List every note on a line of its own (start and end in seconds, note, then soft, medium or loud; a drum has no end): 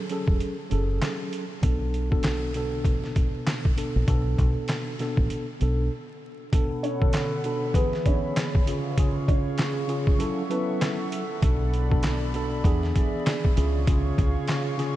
0.09 0.54 F#3 medium
0.09 0.55 C#4 medium
0.09 0.55 G#4 medium
0.09 0.55 A4 loud
0.09 closed hi-hat medium
0.28 0.39 E1 medium
0.28 kick medium
0.40 closed hi-hat medium
0.70 0.98 F#1 medium
0.70 1.43 F#3 medium
0.70 1.43 C#4 medium
0.70 1.43 G#4 medium
0.70 1.44 A4 loud
0.70 closed hi-hat medium
1.02 snare loud
1.02 clap medium
1.02 closed hi-hat loud
1.33 closed hi-hat medium
1.61 2.85 B1 loud
1.61 2.06 B2 medium
1.61 2.07 B3 medium
1.61 2.07 D4 medium
1.61 2.08 A4 loud
1.61 kick loud
1.61 closed hi-hat loud
1.94 closed hi-hat medium
2.10 2.51 B2 loud
2.10 2.51 B3 medium
2.10 2.52 D4 medium
2.10 2.52 A4 loud
2.10 kick medium
2.23 snare loud
2.23 clap medium
2.23 closed hi-hat medium
2.54 3.69 B2 medium
2.54 3.69 B3 medium
2.54 3.70 D4 medium
2.54 3.70 A4 loud
2.54 closed hi-hat medium
2.85 3.12 A1 medium
2.85 kick medium
2.85 closed hi-hat medium
3.04 snare soft
3.16 kick medium
3.16 closed hi-hat medium
3.47 snare loud
3.47 clap medium
3.47 closed hi-hat loud
3.65 kick loud
3.76 4.05 B2 medium
3.76 4.05 B3 medium
3.76 4.06 D4 medium
3.76 4.06 A4 medium
3.76 closed hi-hat medium
3.96 4.07 A#1 medium
4.06 4.35 B1 loud
4.06 4.93 B2 loud
4.06 4.93 B3 medium
4.06 4.94 D4 medium
4.06 4.94 A4 loud
4.06 kick loud
4.06 closed hi-hat loud
4.38 4.54 B1 medium
4.38 kick loud
4.38 closed hi-hat medium
4.68 snare loud
4.68 clap medium
4.68 closed hi-hat medium
4.99 5.44 B2 medium
4.99 5.44 B3 medium
4.99 5.44 D4 medium
4.99 5.45 A4 loud
4.99 snare soft
4.99 closed hi-hat medium
5.17 5.29 A1 medium
5.17 kick medium
5.30 closed hi-hat medium
5.60 5.88 B1 medium
5.60 5.91 B2 medium
5.60 5.91 B3 medium
5.60 5.92 D4 medium
5.60 5.92 A4 loud
5.60 closed hi-hat medium
6.52 6.97 B2 medium
6.52 6.97 B3 medium
6.52 6.98 D4 medium
6.52 7.74 A4 medium
6.52 6.98 A4 loud
6.52 7.74 F#5 medium
6.52 8.65 B5 medium
6.52 kick loud
6.52 closed hi-hat loud
6.83 7.29 C#4 medium
6.83 7.29 C#5 medium
6.83 closed hi-hat medium
6.99 7.40 B2 medium
6.99 7.41 D3 medium
6.99 7.41 B3 medium
6.99 7.42 A4 loud
6.99 kick loud
7.13 snare loud
7.13 clap medium
7.13 closed hi-hat medium
7.44 7.75 B2 medium
7.44 7.73 B3 medium
7.44 7.75 D4 medium
7.44 7.76 A4 loud
7.44 closed hi-hat medium
7.73 8.61 D3 medium
7.73 8.60 E3 medium
7.73 8.60 B3 medium
7.73 8.02 B3 medium
7.73 8.65 G#4 medium
7.73 8.61 G#4 loud
7.73 8.02 B4 medium
7.73 8.66 E5 medium
7.73 kick medium
7.73 closed hi-hat medium
7.93 snare soft
8.06 8.34 C#4 medium
8.06 8.34 C#5 medium
8.06 kick medium
8.06 closed hi-hat medium
8.36 snare loud
8.36 clap medium
8.36 closed hi-hat loud
8.55 kick loud
8.66 8.95 C#3 medium
8.66 8.95 C#4 medium
8.66 8.96 F4 medium
8.66 10.18 G#4 medium
8.66 8.96 G#4 medium
8.66 10.18 C#5 medium
8.66 10.18 F5 medium
8.66 11.40 C#6 medium
8.66 closed hi-hat medium
8.97 9.83 C#3 loud
8.97 9.84 C#4 medium
8.97 9.84 F4 medium
8.97 9.84 G#4 loud
8.97 kick loud
8.97 closed hi-hat loud
9.28 9.74 C#4 medium
9.28 9.74 C#5 medium
9.28 kick loud
9.28 closed hi-hat medium
9.58 snare loud
9.58 clap medium
9.58 closed hi-hat loud
9.87 10.19 C#3 medium
9.87 10.18 C#4 medium
9.87 10.20 F4 medium
9.87 10.20 G#4 loud
9.87 closed hi-hat medium
10.07 kick loud
10.18 10.41 F#3 loud
10.18 10.41 C#4 medium
10.18 10.42 E4 medium
10.18 12.62 A4 medium
10.18 10.42 A4 loud
10.18 11.41 E5 medium
10.18 12.62 F#5 medium
10.18 closed hi-hat medium
10.49 11.22 F#3 loud
10.49 10.97 B3 medium
10.49 11.22 C#4 medium
10.49 11.23 E4 medium
10.49 11.23 A4 loud
10.49 10.96 B4 medium
10.49 closed hi-hat medium
10.81 snare loud
10.81 clap medium
10.81 closed hi-hat loud
11.12 closed hi-hat medium
11.42 12.61 B1 loud
11.42 11.86 B2 medium
11.42 11.87 B3 medium
11.42 11.87 D4 medium
11.42 11.88 A4 loud
11.42 12.63 D5 medium
11.42 13.54 B5 medium
11.42 kick loud
11.42 closed hi-hat loud
11.74 closed hi-hat medium
11.89 12.30 B2 loud
11.89 12.31 B3 medium
11.89 12.31 D4 medium
11.89 12.32 A4 loud
11.89 kick loud
12.03 snare loud
12.03 clap medium
12.03 closed hi-hat medium
12.33 12.64 B2 loud
12.33 12.63 B3 medium
12.33 12.64 D4 medium
12.33 12.66 A4 loud
12.33 closed hi-hat medium
12.63 12.91 E2 loud
12.63 13.50 E3 medium
12.63 13.50 B3 medium
12.63 13.51 D4 medium
12.63 14.96 G#4 medium
12.63 13.51 G#4 loud
12.63 13.56 D5 medium
12.63 13.56 E5 medium
12.63 kick medium
12.63 closed hi-hat medium
12.83 snare soft
12.96 kick medium
12.96 closed hi-hat medium
13.26 snare loud
13.26 clap medium
13.26 closed hi-hat loud
13.45 kick loud
13.55 14.11 C#2 loud
13.55 13.85 C#3 medium
13.55 13.85 C#4 medium
13.55 13.86 F4 medium
13.55 13.86 G#4 medium
13.55 14.96 C#5 medium
13.55 14.96 F5 medium
13.55 14.96 C#6 medium
13.55 closed hi-hat medium
13.87 14.73 C#3 loud
13.87 14.73 C#4 medium
13.87 14.74 F4 medium
13.87 14.74 G#4 loud
13.87 kick loud
13.87 closed hi-hat loud
14.18 14.34 C#2 medium
14.18 kick loud
14.18 closed hi-hat medium
14.48 snare loud
14.48 clap medium
14.48 closed hi-hat medium
14.77 14.96 C#3 medium
14.77 14.96 C#4 medium
14.77 14.96 F4 medium
14.77 14.96 G#4 loud
14.77 snare soft
14.77 closed hi-hat medium